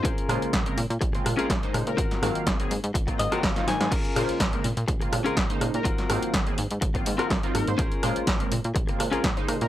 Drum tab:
CC |----------------|----------------|x---------------|----------------|
HH |xxoxxxoxxxoxxxox|xxoxxxoxxxoxoxox|xxoxxxoxxxoxxxox|xxoxxxoxxxoxoxox|
SD |--r-o-----r-o-r-|-or-o------roooo|--r-o-----r-o-r-|-or-o------ro-r-|
BD |o---o---o---o---|o---o---oo--o---|o---o---o---o---|o---o---oo--o---|

CC |----------------|
HH |xxoxxxoxxxoxxxox|
SD |--r-o-----r-o-r-|
BD |o---o---o---o---|